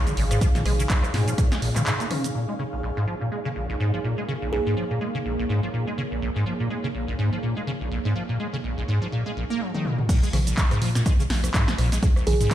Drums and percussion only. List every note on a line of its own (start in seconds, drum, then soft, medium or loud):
0.07 closed hi-hat soft
0.07 mid tom medium
0.07 shaker soft
0.17 open hi-hat loud
0.31 cross-stick medium
0.31 closed hi-hat medium
0.31 shaker medium
0.41 kick loud
0.41 closed hi-hat medium
0.41 shaker medium
0.55 snare soft
0.55 closed hi-hat soft
0.55 mid tom medium
0.55 shaker soft
0.66 cross-stick medium
0.66 open hi-hat loud
0.80 shaker medium
0.90 kick loud
0.90 clap loud
0.90 closed hi-hat medium
0.90 shaker medium
1.03 cross-stick medium
1.03 shaker soft
1.14 snare medium
1.14 open hi-hat loud
1.28 closed hi-hat soft
1.28 shaker medium
1.38 kick loud
1.38 cross-stick medium
1.38 closed hi-hat medium
1.38 shaker medium
1.52 snare medium
1.52 closed hi-hat medium
1.52 shaker soft
1.62 open hi-hat loud
1.76 cross-stick medium
1.76 clap soft
1.76 closed hi-hat soft
1.76 mid tom medium
1.76 shaker medium
1.86 clap loud
1.86 closed hi-hat medium
1.86 shaker medium
2.00 closed hi-hat soft
2.00 shaker soft
2.11 cross-stick medium
2.11 open hi-hat loud
2.11 mid tom medium
2.24 closed hi-hat medium
2.24 shaker medium
9.74 high tom soft
9.85 mid tom medium
9.99 mid tom medium
10.09 kick loud
10.09 closed hi-hat medium
10.09 crash loud
10.09 shaker medium
10.23 shaker soft
10.33 cross-stick medium
10.33 open hi-hat loud
10.33 mid tom medium
10.47 closed hi-hat medium
10.47 shaker medium
10.57 kick loud
10.57 clap loud
10.57 closed hi-hat medium
10.57 shaker medium
10.71 cross-stick medium
10.71 closed hi-hat soft
10.71 shaker soft
10.82 open hi-hat loud
10.95 snare medium
10.95 closed hi-hat medium
10.95 shaker medium
11.06 kick loud
11.06 cross-stick medium
11.06 closed hi-hat medium
11.06 shaker medium
11.20 shaker soft
11.30 snare medium
11.30 open hi-hat loud
11.44 cross-stick medium
11.44 closed hi-hat medium
11.44 shaker medium
11.54 kick loud
11.54 clap loud
11.54 closed hi-hat medium
11.54 shaker medium
11.68 snare medium
11.68 shaker soft
11.78 cross-stick medium
11.78 open hi-hat loud
11.92 snare soft
11.92 closed hi-hat medium
11.92 shaker medium
12.03 kick loud
12.03 closed hi-hat medium
12.03 shaker medium
12.16 cross-stick medium
12.16 shaker soft
12.27 open hi-hat loud
12.27 mid tom medium
12.41 closed hi-hat medium
12.41 shaker medium
12.51 kick loud
12.51 cross-stick medium
12.51 closed hi-hat medium